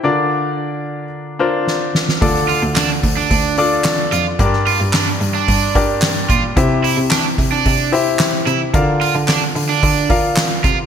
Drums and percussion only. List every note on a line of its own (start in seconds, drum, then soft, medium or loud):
1.67 snare medium
1.95 snare medium
2.09 snare medium
2.22 kick loud
2.22 open hi-hat loud
2.36 snare soft
2.49 hi-hat pedal medium
2.49 open hi-hat medium
2.76 snare loud
2.76 clap medium
2.76 hi-hat pedal medium
2.76 open hi-hat loud
3.03 kick medium
3.03 hi-hat pedal medium
3.03 open hi-hat medium
3.31 kick loud
3.31 hi-hat pedal medium
3.31 open hi-hat loud
3.57 hi-hat pedal medium
3.57 open hi-hat medium
3.84 snare loud
3.84 clap medium
3.84 hi-hat pedal medium
3.84 open hi-hat medium
4.12 hi-hat pedal medium
4.12 open hi-hat medium
4.39 kick loud
4.39 hi-hat pedal medium
4.39 open hi-hat medium
4.53 snare soft
4.66 hi-hat pedal medium
4.66 open hi-hat medium
4.93 snare loud
4.93 clap medium
4.93 hi-hat pedal medium
4.93 open hi-hat loud
5.21 hi-hat pedal medium
5.21 open hi-hat medium
5.48 kick medium
5.48 hi-hat pedal medium
5.48 open hi-hat loud
5.75 kick loud
5.75 hi-hat pedal medium
5.75 open hi-hat medium
6.02 snare loud
6.02 clap medium
6.02 hi-hat pedal medium
6.02 open hi-hat medium
6.30 kick loud
6.30 hi-hat pedal medium
6.30 open hi-hat medium
6.57 kick loud
6.57 hi-hat pedal medium
6.57 open hi-hat loud
6.84 hi-hat pedal medium
6.84 open hi-hat medium
7.11 snare loud
7.11 clap medium
7.11 hi-hat pedal medium
7.11 open hi-hat medium
7.38 kick medium
7.38 hi-hat pedal medium
7.38 open hi-hat medium
7.66 kick medium
7.66 hi-hat pedal medium
7.66 open hi-hat loud
7.93 hi-hat pedal medium
7.93 open hi-hat medium
8.19 snare loud
8.19 clap medium
8.19 hi-hat pedal medium
8.19 open hi-hat medium
8.47 hi-hat pedal medium
8.47 open hi-hat medium
8.74 kick loud
8.74 hi-hat pedal medium
8.74 open hi-hat loud
9.01 hi-hat pedal medium
9.01 open hi-hat medium
9.28 snare loud
9.28 clap medium
9.28 hi-hat pedal medium
9.28 open hi-hat medium
9.56 hi-hat pedal medium
9.56 open hi-hat medium
9.83 kick medium
9.83 hi-hat pedal medium
9.83 open hi-hat loud
10.10 kick loud
10.10 hi-hat pedal medium
10.10 open hi-hat medium
10.36 snare loud
10.36 clap medium
10.36 hi-hat pedal medium
10.36 open hi-hat medium
10.64 kick loud
10.64 hi-hat pedal medium
10.64 open hi-hat medium